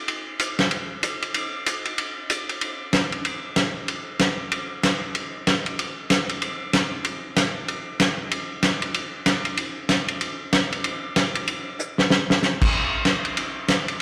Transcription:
0.08 ride
0.39 hi-hat pedal, ride
0.59 snare, ride
0.71 ride
1.03 hi-hat pedal, ride
1.22 ride
1.34 ride
1.66 hi-hat pedal, ride
1.85 ride
1.98 ride
2.30 hi-hat pedal, ride
2.49 ride
2.61 ride
2.93 snare, hi-hat pedal, ride
3.12 ride
3.25 ride
3.56 snare, hi-hat pedal, ride
3.88 ride
4.19 snare, hi-hat pedal, ride
4.51 ride
4.83 snare, hi-hat pedal, ride
5.15 ride
5.47 snare, hi-hat pedal, ride
5.66 ride
5.79 ride
6.10 snare, hi-hat pedal, ride
6.29 ride
6.42 ride
6.73 snare, hi-hat pedal, ride
7.04 ride
7.36 snare, hi-hat pedal, ride
7.68 ride
8.00 snare, hi-hat pedal, ride
8.31 ride
8.62 snare, hi-hat pedal, ride
8.82 ride
8.94 ride
9.26 snare, hi-hat pedal, ride
9.45 ride
9.57 ride
9.89 snare, hi-hat pedal, ride
10.08 ride
10.21 ride
10.53 snare, hi-hat pedal, ride
10.72 ride
10.84 ride
11.16 snare, hi-hat pedal, ride
11.35 ride
11.47 ride
11.79 hi-hat pedal
11.98 snare
12.10 snare
12.30 snare
12.42 snare, hi-hat pedal
12.61 kick, crash
13.05 snare, hi-hat pedal, ride
13.25 ride
13.37 ride
13.68 snare, hi-hat pedal, ride
13.88 ride

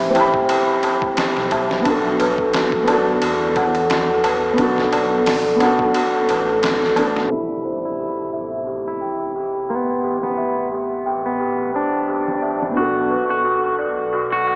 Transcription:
Already playing: A1 C4 E4 G4 C5 E5 G5 B5
0.01 darbuka tek
0.10 C4 E4
0.14 G4 G5, ride, darbuka tek
0.20 B5
0.34 kick, darbuka tek
0.49 G4, ride, darbuka tek
0.68 darbuka tek
0.83 C5, ride, darbuka tek
1.02 kick, darbuka tek
1.17 G4, snare, ride, darbuka tek
1.37 B1, snare, darbuka tek
1.51 E5, kick, ride, darbuka tek
1.71 snare, darbuka tek
1.81 B3 D4
1.85 B1 F#4, kick, ride, darbuka tek
1.90 A4
2.04 darbuka tek
2.19 B4, ride, darbuka tek
2.38 kick, darbuka tek
2.53 F#4, snare, ride, darbuka tek
2.72 kick, darbuka tek
2.83 B3 D4
2.88 F#4 D5, ride, darbuka tek
2.92 A4
3.07 darbuka tek
3.22 E2 F#4, ride, darbuka tek
3.41 darbuka tek
3.56 F#5, kick, ride, darbuka tek
3.74 ride, darbuka tek
3.90 F#4, snare, ride, darbuka tek
4.08 darbuka tek
4.24 B4, ride, darbuka tek
4.42 darbuka tek
4.53 B3 D4
4.58 B1 F#4, kick, ride, darbuka tek
4.63 A4
4.76 snare, darbuka tek
4.93 D5, ride, darbuka tek
5.12 darbuka tek
5.26 F#4, snare, open hi-hat, darbuka tek
5.45 darbuka tek
5.56 B3 D4
5.60 F#4 F#5, ride, darbuka tek
5.65 A4
5.79 kick, darbuka tek
5.94 F#4, ride, darbuka tek
6.14 darbuka tek
6.29 A1 B4, ride, darbuka tek
6.49 darbuka tek
6.62 F#4, snare, ride, darbuka tek
6.82 snare, darbuka tek
6.95 B3 D4 F#4 D5, ride, darbuka tek
7.00 A4
7.16 snare, darbuka tek
7.27 C3 E4
7.31 A1 E4 G4, ride
7.36 B5
7.65 C5, ride
7.85 E4
7.99 G4, ride
8.33 E5, ride
8.67 G4, ride
8.88 E4
9.01 G5, ride
9.20 ride
9.35 G4, ride
9.69 B3 C6, ride
10.03 G4, ride
10.23 B3, snare
10.37 E5, ride
10.72 G4, open hi-hat
11.06 G5, ride
11.26 B3
11.40 G4, ride
11.74 D4 C5, ride
12.08 G4, ride
12.28 snare
12.42 E5, ride
12.62 snare
12.71 B3 D4
12.77 B1 F#4 A4, ride
13.10 B4, ride
13.30 F#4
13.44 F#4, ride
13.78 D5, ride
14.13 F#4, ride
14.32 F#4
14.47 F#5, ride

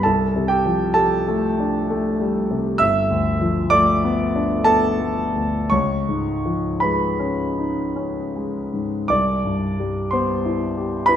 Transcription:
0.03 C2 A4 A5
0.36 C3
0.48 G4 G5
0.66 F3
0.94 G3 A4 A5
1.28 A3
1.60 D4
1.90 A3
2.21 G3
2.51 C3
2.78 G1 E5 E6
3.10 D2
3.41 F3
3.70 A3 D5 D6
4.04 B3
4.35 D4
4.64 B3 A4 A5
5.00 A3
5.35 D2
5.70 C#2 C#5 C#6
6.09 G#2
6.46 F3
6.80 G#3 B4 B5
7.19 C#4
7.58 D#4
7.96 C#4
8.36 G#3
8.74 G#2
9.08 C2 D5 D6
9.45 G2
9.80 G3
10.11 B3 C5 C6
10.45 E4
10.77 G4
11.06 E4 B4 B5

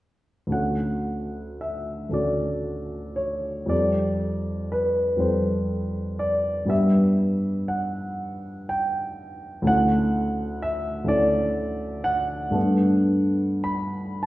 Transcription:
0.47 D2 A3
0.51 C#4 F#4 A4 F#5
1.61 E5
2.09 D2 A3 C#4 F#4
2.14 A4 D5
3.16 C#5
3.66 F2 G3 C4 G4 D5
3.70 A4
4.72 B4
5.16 F2 G3 C4 G4 C5
5.21 A4
6.19 D5
6.65 G2 G3 B3 G4
6.69 B4 E5
7.68 F#5
8.69 G5
9.62 D2 A3 C#4
9.67 E4 A4 F#5
10.62 E5
11.04 D2 A3 C#4 E4 D5
11.09 A4
12.04 F#5
12.50 G2 A3 B3 D4
12.56 A4
13.64 B5
14.23 A5

